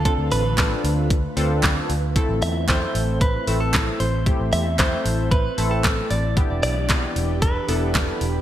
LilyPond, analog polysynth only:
\new Staff \with { instrumentName = "Analog polysynth" } { \time 4/4 \key a \minor \tempo 4 = 114 <c' d' f' a'>8 r8 <c' d' f' a'>4 r8 <c' d' f' a'>4 r8 | <a c' e' a'>8 r8 <a c' e' a'>4 r8 <a c' e' a'>4 r8 | <a c' e' g'>8 r8 <a c' e' a'>4 r8 <a c' e' a'>4 r8 | <b d' e' g'>8 r8 <b d' e' g'>4 r8 <b d' e' a'>4 r8 | }